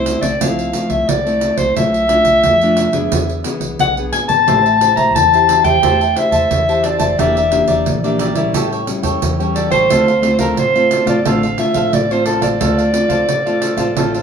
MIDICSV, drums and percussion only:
0, 0, Header, 1, 2, 480
1, 0, Start_track
1, 0, Key_signature, -1, "minor"
1, 0, Tempo, 677966
1, 1248, Time_signature, 4, 2, 24, 8
1, 10071, End_track
2, 0, Start_track
2, 0, Title_t, "Pandeiro"
2, 43, Note_on_c, 9, 54, 66
2, 113, Note_off_c, 9, 54, 0
2, 159, Note_on_c, 9, 54, 59
2, 230, Note_off_c, 9, 54, 0
2, 290, Note_on_c, 9, 54, 86
2, 361, Note_off_c, 9, 54, 0
2, 415, Note_on_c, 9, 54, 32
2, 486, Note_off_c, 9, 54, 0
2, 520, Note_on_c, 9, 54, 59
2, 591, Note_off_c, 9, 54, 0
2, 635, Note_on_c, 9, 54, 49
2, 706, Note_off_c, 9, 54, 0
2, 770, Note_on_c, 9, 54, 81
2, 841, Note_off_c, 9, 54, 0
2, 897, Note_on_c, 9, 54, 31
2, 968, Note_off_c, 9, 54, 0
2, 1000, Note_on_c, 9, 54, 61
2, 1071, Note_off_c, 9, 54, 0
2, 1115, Note_on_c, 9, 54, 57
2, 1186, Note_off_c, 9, 54, 0
2, 1250, Note_on_c, 9, 54, 75
2, 1320, Note_off_c, 9, 54, 0
2, 1375, Note_on_c, 9, 54, 34
2, 1446, Note_off_c, 9, 54, 0
2, 1480, Note_on_c, 9, 54, 64
2, 1551, Note_off_c, 9, 54, 0
2, 1591, Note_on_c, 9, 54, 56
2, 1662, Note_off_c, 9, 54, 0
2, 1724, Note_on_c, 9, 54, 75
2, 1795, Note_off_c, 9, 54, 0
2, 1851, Note_on_c, 9, 54, 34
2, 1921, Note_off_c, 9, 54, 0
2, 1959, Note_on_c, 9, 54, 67
2, 2029, Note_off_c, 9, 54, 0
2, 2075, Note_on_c, 9, 54, 56
2, 2146, Note_off_c, 9, 54, 0
2, 2207, Note_on_c, 9, 54, 88
2, 2278, Note_off_c, 9, 54, 0
2, 2333, Note_on_c, 9, 54, 33
2, 2404, Note_off_c, 9, 54, 0
2, 2438, Note_on_c, 9, 54, 65
2, 2509, Note_off_c, 9, 54, 0
2, 2554, Note_on_c, 9, 54, 49
2, 2625, Note_off_c, 9, 54, 0
2, 2686, Note_on_c, 9, 54, 76
2, 2757, Note_off_c, 9, 54, 0
2, 2811, Note_on_c, 9, 54, 30
2, 2882, Note_off_c, 9, 54, 0
2, 2921, Note_on_c, 9, 54, 63
2, 2992, Note_off_c, 9, 54, 0
2, 3036, Note_on_c, 9, 54, 57
2, 3106, Note_off_c, 9, 54, 0
2, 3170, Note_on_c, 9, 54, 82
2, 3241, Note_off_c, 9, 54, 0
2, 3298, Note_on_c, 9, 54, 33
2, 3369, Note_off_c, 9, 54, 0
2, 3407, Note_on_c, 9, 54, 62
2, 3478, Note_off_c, 9, 54, 0
2, 3520, Note_on_c, 9, 54, 52
2, 3591, Note_off_c, 9, 54, 0
2, 3652, Note_on_c, 9, 54, 73
2, 3723, Note_off_c, 9, 54, 0
2, 3777, Note_on_c, 9, 54, 31
2, 3848, Note_off_c, 9, 54, 0
2, 3886, Note_on_c, 9, 54, 68
2, 3957, Note_off_c, 9, 54, 0
2, 3997, Note_on_c, 9, 54, 53
2, 4068, Note_off_c, 9, 54, 0
2, 4128, Note_on_c, 9, 54, 87
2, 4199, Note_off_c, 9, 54, 0
2, 4256, Note_on_c, 9, 54, 32
2, 4327, Note_off_c, 9, 54, 0
2, 4364, Note_on_c, 9, 54, 61
2, 4435, Note_off_c, 9, 54, 0
2, 4477, Note_on_c, 9, 54, 51
2, 4548, Note_off_c, 9, 54, 0
2, 4608, Note_on_c, 9, 54, 75
2, 4679, Note_off_c, 9, 54, 0
2, 4736, Note_on_c, 9, 54, 31
2, 4807, Note_off_c, 9, 54, 0
2, 4840, Note_on_c, 9, 54, 60
2, 4911, Note_off_c, 9, 54, 0
2, 4952, Note_on_c, 9, 54, 62
2, 5023, Note_off_c, 9, 54, 0
2, 5091, Note_on_c, 9, 54, 78
2, 5161, Note_off_c, 9, 54, 0
2, 5216, Note_on_c, 9, 54, 35
2, 5287, Note_off_c, 9, 54, 0
2, 5322, Note_on_c, 9, 54, 66
2, 5392, Note_off_c, 9, 54, 0
2, 5434, Note_on_c, 9, 54, 56
2, 5505, Note_off_c, 9, 54, 0
2, 5566, Note_on_c, 9, 54, 69
2, 5637, Note_off_c, 9, 54, 0
2, 5694, Note_on_c, 9, 54, 32
2, 5765, Note_off_c, 9, 54, 0
2, 5801, Note_on_c, 9, 54, 70
2, 5872, Note_off_c, 9, 54, 0
2, 5915, Note_on_c, 9, 54, 58
2, 5986, Note_off_c, 9, 54, 0
2, 6048, Note_on_c, 9, 54, 83
2, 6119, Note_off_c, 9, 54, 0
2, 6178, Note_on_c, 9, 54, 31
2, 6248, Note_off_c, 9, 54, 0
2, 6282, Note_on_c, 9, 54, 61
2, 6353, Note_off_c, 9, 54, 0
2, 6396, Note_on_c, 9, 54, 57
2, 6466, Note_off_c, 9, 54, 0
2, 6529, Note_on_c, 9, 54, 80
2, 6600, Note_off_c, 9, 54, 0
2, 6658, Note_on_c, 9, 54, 30
2, 6729, Note_off_c, 9, 54, 0
2, 6767, Note_on_c, 9, 54, 60
2, 6837, Note_off_c, 9, 54, 0
2, 6879, Note_on_c, 9, 54, 59
2, 6950, Note_off_c, 9, 54, 0
2, 7011, Note_on_c, 9, 54, 81
2, 7082, Note_off_c, 9, 54, 0
2, 7137, Note_on_c, 9, 54, 34
2, 7208, Note_off_c, 9, 54, 0
2, 7244, Note_on_c, 9, 54, 63
2, 7314, Note_off_c, 9, 54, 0
2, 7354, Note_on_c, 9, 54, 59
2, 7424, Note_off_c, 9, 54, 0
2, 7486, Note_on_c, 9, 54, 76
2, 7557, Note_off_c, 9, 54, 0
2, 7615, Note_on_c, 9, 54, 31
2, 7686, Note_off_c, 9, 54, 0
2, 7724, Note_on_c, 9, 54, 73
2, 7794, Note_off_c, 9, 54, 0
2, 7838, Note_on_c, 9, 54, 58
2, 7909, Note_off_c, 9, 54, 0
2, 7968, Note_on_c, 9, 54, 79
2, 8039, Note_off_c, 9, 54, 0
2, 8094, Note_on_c, 9, 54, 33
2, 8165, Note_off_c, 9, 54, 0
2, 8198, Note_on_c, 9, 54, 61
2, 8269, Note_off_c, 9, 54, 0
2, 8314, Note_on_c, 9, 54, 55
2, 8385, Note_off_c, 9, 54, 0
2, 8448, Note_on_c, 9, 54, 75
2, 8518, Note_off_c, 9, 54, 0
2, 8574, Note_on_c, 9, 54, 32
2, 8645, Note_off_c, 9, 54, 0
2, 8678, Note_on_c, 9, 54, 67
2, 8748, Note_off_c, 9, 54, 0
2, 8793, Note_on_c, 9, 54, 59
2, 8864, Note_off_c, 9, 54, 0
2, 8926, Note_on_c, 9, 54, 79
2, 8997, Note_off_c, 9, 54, 0
2, 9052, Note_on_c, 9, 54, 34
2, 9123, Note_off_c, 9, 54, 0
2, 9160, Note_on_c, 9, 54, 68
2, 9230, Note_off_c, 9, 54, 0
2, 9273, Note_on_c, 9, 54, 58
2, 9344, Note_off_c, 9, 54, 0
2, 9406, Note_on_c, 9, 54, 71
2, 9477, Note_off_c, 9, 54, 0
2, 9534, Note_on_c, 9, 54, 33
2, 9605, Note_off_c, 9, 54, 0
2, 9641, Note_on_c, 9, 54, 64
2, 9711, Note_off_c, 9, 54, 0
2, 9753, Note_on_c, 9, 54, 57
2, 9823, Note_off_c, 9, 54, 0
2, 9888, Note_on_c, 9, 54, 82
2, 9959, Note_off_c, 9, 54, 0
2, 10014, Note_on_c, 9, 54, 31
2, 10071, Note_off_c, 9, 54, 0
2, 10071, End_track
0, 0, End_of_file